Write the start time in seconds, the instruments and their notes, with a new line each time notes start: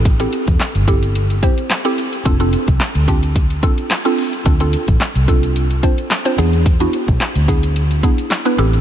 Already playing: fingered electric bass A1, synth pluck C4 E4 G4 A4
0.05 kick, closed hi-hat
0.20 synth pluck C4 E4 G4 A4, closed hi-hat
0.33 closed hi-hat
0.47 fingered electric bass E2, kick, closed hi-hat
0.60 snare, clap, closed hi-hat
0.75 fingered electric bass G1, closed hi-hat
0.88 synth pluck C4 E4 G4 A4, kick, closed hi-hat
1.03 closed hi-hat
1.15 closed hi-hat
1.30 closed hi-hat
1.43 synth pluck C4 E4 G4 C5, kick, closed hi-hat
1.58 closed hi-hat
1.70 snare, clap, closed hi-hat
1.85 synth pluck C4 E4 G4 A4, closed hi-hat
1.98 closed hi-hat
2.13 closed hi-hat
2.25 fingered electric bass F1, synth pluck C4 D4 F4 A4, kick, closed hi-hat
2.40 synth pluck C4 D4 F4 A4, closed hi-hat
2.53 closed hi-hat
2.68 fingered electric bass C2, kick, closed hi-hat
2.80 snare, clap, closed hi-hat
2.95 fingered electric bass D2, closed hi-hat
3.08 synth pluck C4 D4 F4 G4, kick, closed hi-hat
3.23 closed hi-hat
3.36 kick, closed hi-hat
3.50 closed hi-hat
3.63 synth pluck C4 D4 F4 A4, kick, closed hi-hat
3.78 closed hi-hat
3.90 snare, clap, closed hi-hat
4.05 synth pluck C4 D4 F4 A4, closed hi-hat
4.18 open hi-hat
4.33 closed hi-hat
4.45 fingered electric bass D2, synth pluck C4 D4 F4 A4, kick, closed hi-hat
4.60 synth pluck C4 D4 F4 A4, closed hi-hat
4.73 closed hi-hat
4.88 fingered electric bass A1, kick, closed hi-hat
5.00 snare, clap, closed hi-hat
5.15 fingered electric bass C2, closed hi-hat
5.28 synth pluck C4 D4 F4 A4, kick, closed hi-hat
5.43 closed hi-hat
5.56 closed hi-hat
5.71 closed hi-hat
5.83 synth pluck C4 D4 F4 C5, kick, closed hi-hat
5.98 closed hi-hat
6.10 snare, clap, closed hi-hat
6.25 synth pluck C4 D4 F4 C5, closed hi-hat
6.38 fingered electric bass E2, synth pluck B3 D4 E4 G#4, closed hi-hat
6.53 closed hi-hat
6.66 kick, closed hi-hat
6.80 synth pluck B3 D4 E4 F#4, closed hi-hat
6.93 closed hi-hat
7.08 fingered electric bass B1, kick, closed hi-hat
7.20 snare, clap, closed hi-hat
7.35 fingered electric bass D2, closed hi-hat
7.48 synth pluck B3 D4 E4 G#4, kick, closed hi-hat
7.63 closed hi-hat
7.76 closed hi-hat
7.91 closed hi-hat
8.03 synth pluck B3 D4 E4 G#4, kick, closed hi-hat
8.18 closed hi-hat
8.30 snare, clap, closed hi-hat
8.45 synth pluck B3 D4 E4 B4, closed hi-hat
8.58 fingered electric bass A1, synth pluck C4 E4 G4 A4, closed hi-hat
8.73 closed hi-hat